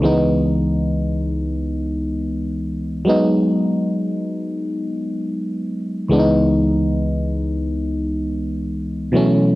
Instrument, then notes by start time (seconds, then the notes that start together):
fm electric piano
0.01 C#2 E3 G#3 B3
0.05 D#4
3.05 F#3 G#3 B3
3.09 D#4
6.08 C#2 E3 G#3 B3
6.13 D4
6.19 D#4
9.12 B2 E3 F#3 A3
9.16 C#4